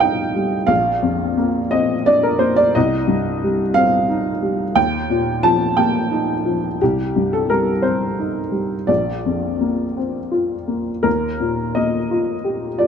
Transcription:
upright piano
Already playing: C2 G2 G3 C4 C5 D#5 F5
0.00 D#4 G5
0.36 G3
0.67 A#1 F5
1.02 F2
1.37 A#3
1.71 C4 D#5
2.06 D4 D5
2.23 A#4
2.39 A#3 C5
2.56 D5
2.75 C2 D#5
3.08 G2
3.44 G3
3.74 C4 F5
4.09 D#4
4.42 G3
4.75 D#2 G5
5.10 A#2
5.43 F3 A5
5.77 A#3 G5
6.11 D#4
6.45 F3
6.81 C2 G4
7.16 G2
7.33 A4
7.50 G3 A#4
7.82 C4 C5
8.19 D#4
8.52 G3
8.87 A#1 D5
9.26 F2
9.61 A#3
9.97 C4
10.31 F4
10.67 A#3
11.03 D#2 A#4
11.40 A#2
11.75 A#3 D#5
12.11 F4
12.44 G4
12.78 F4 D5

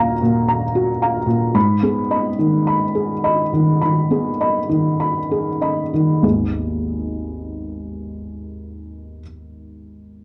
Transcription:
felt piano
Already playing: A#2 A#3 F#4 F5 A#5
0.22 A#2
0.48 A#5
0.75 F#4
1.02 F5 A#5
1.26 A#2
1.54 G#2 B5
1.83 B3 G#4
2.11 D#5 B5
2.39 D#3
2.67 B5
2.95 G#4
3.24 D#5 B5
3.53 D#3
3.81 D#3 B5
4.10 B3 G#4
4.40 D#5 B5
4.69 D#3
5.00 B5
5.31 G#4
5.61 D#5 B5
5.94 D#3
6.23 G#1 D#2 G#3 B3 D#4 G#4

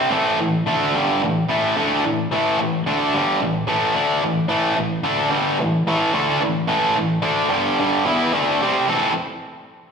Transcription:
overdriven electric guitar
Already playing: G3 C4
0.10 A2 E3 A3
0.40 A2 E3
0.66 D3 A3 D4
0.94 G2 D3 G3
1.23 A2 E3
1.49 A2 E3 A3
1.76 D3 A3 D4
2.04 A2 E3
2.32 A2 E3 A3
2.59 A2 E3
2.86 D3 A3 D4
3.14 G2 D3 G3
3.42 A2 E3
3.67 A2 E3 A3
3.95 D3 A3 D4
4.23 A2 E3
4.48 A2 E3 A3
4.76 A2 E3
5.04 D3 A3 D4
5.30 G2 D3 G3
5.59 A2 E3
5.87 A2 E3 A3
6.14 D3 A3 D4
6.41 A2 E3
6.68 A2 E3 A3
6.95 A2 E3
7.22 D3 A3 D4
7.49 G2 D3 G3
7.79 G2 D3 G3
8.05 E3 B3 E4
8.33 D3 A3 D4
8.62 C3 G3 C4
8.89 A2 E3 A3 C4 E4 A4

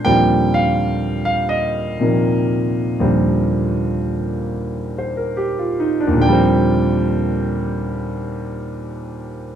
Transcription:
grand piano
0.05 D#2 A#2 D3 F3 G3 C4 G5
0.54 F5
1.25 F5
1.49 D#5
2.00 A#2 C3 D#3 F3 A#3
3.00 D#2 A#2 D3 F3 G3 C4
4.98 C5
5.17 A#4
5.37 G4
5.59 F4
5.80 D#4
6.00 D4
6.07 D#2
6.13 A#2
6.18 D3 G5
6.22 F3
6.28 G3
6.33 C4

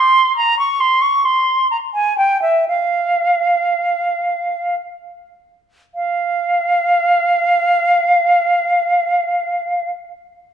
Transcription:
flute
Already playing: C6
0.36 A#5
0.59 C#6
0.80 C6
1.01 C#6
1.25 C6
1.71 A#5
1.94 G#5
2.18 G5
2.42 E5
2.68 F5
5.95 F5

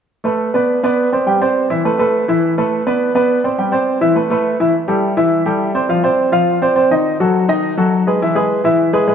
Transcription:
grand piano
0.24 A3 A4 B4
0.54 B3 B4 D5
0.83 B3 B4 D5
1.12 C4 C5 D5
1.27 G3 G4 G5
1.41 C4 C5 D5
1.70 E3 E4 E5
1.85 A3 A4 B4
1.99 A3 A4 B4
2.28 E3 E4 E5
2.58 A3 A4 B4
2.87 B3 B4 D5
3.15 B3 B4 D5
3.44 C4 C5 D5
3.58 G3 G4 G5
3.72 C4 C5 D5
4.01 E3 E4 E5
4.15 A3 A4 B4
4.30 A3 A4 B4
4.60 E3 E4 E5
4.88 G3 G4 A4
5.17 E3 E4 E5
5.46 G3 G4 A4
5.75 C4 C5 D5
5.89 F3 F4 F5
6.04 C4 C5 D5
6.32 F3 F4 F5
6.62 C4 C5 D5
6.76 C4 C5 D5
6.91 D#3 D#4 D#5
7.20 F#3 F#4 A4
7.48 D#3 D#4 D#5
7.77 F#3 F#4 A4
8.07 G#3 G#4 B4
8.22 E3 E4 E5
8.35 G#3 G#4 B4
8.64 E3 E4 E5
8.93 G#3 G#4 B4
9.08 G#3 G#4 B4

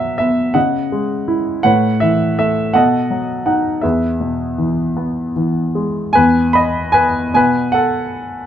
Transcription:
grand piano
Already playing: B2 F#3 B4 E5
0.18 B3 E5
0.54 C#3 D#5 F#5
0.92 G#3
1.28 E4
1.63 A2 B4 C#5 F#5
2.00 E3 E5
2.38 A3 E5
2.74 B2 A4 D#5 F#5
3.10 F#3
3.46 D#4 F#5
3.81 E2 G#4 B4 E5
4.20 B2
4.58 E3
4.97 B3
5.36 E3
5.75 G#3
6.13 E2 B4 G#5
6.53 D#5 B5
6.92 B4 G#5
7.34 B2 B4 G#5
7.72 A4 F#5

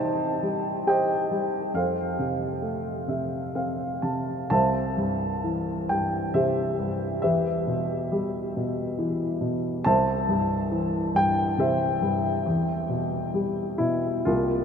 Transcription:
grand piano
Already playing: C3 G3 C5 D#5 G5 A5
0.00 D#4
0.43 G3
0.87 G4 C5 D#5 G5
1.31 G3
1.74 F2 A4 C5 F5
2.19 C3
2.62 A3
3.08 C3 E5
3.55 C4 F5
4.02 C3 A5
4.50 C2 C5 E5 A5
4.97 G2
5.44 E3
5.89 G2 G5
6.34 C3 G4 C5 E5
6.79 G2
7.22 E2 G4 B4 E5
7.67 B2
8.12 G3
8.57 B2
8.98 E3
9.41 B2
9.84 C2 C5 E5 A5
10.29 G2
10.71 E3
11.14 G2 G5
11.58 C3 G4 C5 E5
12.02 G2
12.46 E2
12.89 B2
13.34 G3
13.78 B2 E4
14.25 C2 A#3 F4

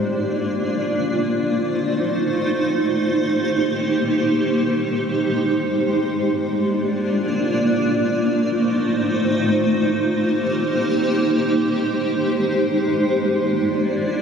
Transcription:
ambient pad
Already playing: A#3 D4 F4 D5
1.19 A3 D#4 C5
2.91 A#3 G4
4.62 G#3 C5
6.34 A#3 D4 F4 D5
8.05 A3 D#4 F4 C5
9.76 A#3 D#4 G4 C5
11.48 G#3 C5
13.20 A#3 D4 F4 D5

